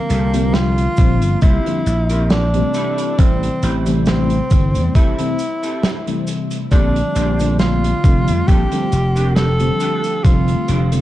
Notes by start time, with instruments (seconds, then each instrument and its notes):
Already playing: fm electric piano D3 F3 G3 A#3 C4, tenor saxophone A#3
0.09 slap bass C2, clean electric guitar C4 F4 G4 A4, closed hi-hat, cabasa
0.32 fm electric piano D3 F3 G3 A#3 C4, closed hi-hat, cabasa
0.54 tenor saxophone F4, snare, closed hi-hat, cabasa
0.78 closed hi-hat
0.97 slap bass A#1, fm electric piano D3 F3 G3 A#3 C4, kick, closed hi-hat, cabasa
1.22 slap bass G1, closed hi-hat, cabasa
1.42 slap bass C2, clean electric guitar C4 F4 G4 C5, tenor saxophone E4, kick, closed hi-hat, cabasa
1.65 fm electric piano D3 F3 G3 A#3 C4, closed hi-hat
1.86 slap bass A#1, closed hi-hat, cabasa
2.09 clean electric guitar C4 F4 G4 A#4, closed hi-hat, cabasa
2.30 tenor saxophone D4, snare, closed hi-hat, cabasa
2.53 fm electric piano C3 E3 G3 A3 C4, closed hi-hat
2.74 clean electric guitar C4 E4 G4 A4, closed hi-hat, cabasa
2.98 closed hi-hat, cabasa
3.18 slap bass A1, fm electric piano C3 E3 G3 A3 C4, tenor saxophone C4, kick, closed hi-hat, cabasa
3.43 closed hi-hat
3.63 slap bass A1, clean electric guitar C4 E4 G4 C5, closed hi-hat, cabasa
3.86 fm electric piano C3 E3 G3 A3 C4, closed hi-hat, cabasa
4.06 tenor saxophone C4, snare, closed hi-hat, cabasa
4.30 closed hi-hat
4.50 slap bass G1, fm electric piano C3 E3 G3 A3 C4, kick, closed hi-hat, cabasa
4.75 slap bass E2, closed hi-hat, cabasa
4.95 clean electric guitar C4 E4 G4 A4, tenor saxophone E4, kick, closed hi-hat, cabasa
5.18 fm electric piano C3 E3 G3 A3 C4, closed hi-hat
5.39 closed hi-hat, cabasa
5.63 clean electric guitar C4 E4 G4 A4, closed hi-hat, cabasa
5.83 snare, closed hi-hat, cabasa
6.06 fm electric piano C3 E3 G3 A3 C4, closed hi-hat
6.27 muted clean electric guitar stroke, closed hi-hat, cabasa
6.51 closed hi-hat, cabasa
6.71 slap bass A#1, fm electric piano D3 F3 G3 A3 C4, clean electric guitar C4 D4 G4 A4, tenor saxophone D4, kick, closed hi-hat, cabasa
6.96 closed hi-hat
7.15 slap bass A#1, clean electric guitar C4 D4 G4 C5, closed hi-hat, cabasa
7.39 fm electric piano D3 F3 G3 A3 C4, closed hi-hat, cabasa
7.59 tenor saxophone F4, snare, closed hi-hat, cabasa
7.84 closed hi-hat
8.03 slap bass F1, fm electric piano D3 F3 G3 A3 C4, kick, closed hi-hat, cabasa
8.28 slap bass F2, closed hi-hat, cabasa
8.48 slap bass A#1, clean electric guitar C4 D4 G4 A4, tenor saxophone G4, kick, closed hi-hat, cabasa
8.71 fm electric piano D3 F3 G3 A3 C4, closed hi-hat
8.92 slap bass F1, closed hi-hat, cabasa
9.16 clean electric guitar C4 D4 G4 A#4, closed hi-hat, cabasa
9.36 tenor saxophone A4, snare, closed hi-hat, cabasa
9.59 fm electric piano D3 F3 G3 A3 C4, closed hi-hat
9.80 clean electric guitar D4 F4 G4 A4, closed hi-hat, cabasa
10.04 closed hi-hat, cabasa
10.23 slap bass F1, fm electric piano D3 F3 G3 A3 C4, tenor saxophone F4, kick, closed hi-hat, cabasa
10.48 closed hi-hat
10.68 slap bass F1, clean electric guitar D4 F4 G4 C5, closed hi-hat, cabasa
10.92 fm electric piano D3 F3 G3 A3 C4, closed hi-hat, cabasa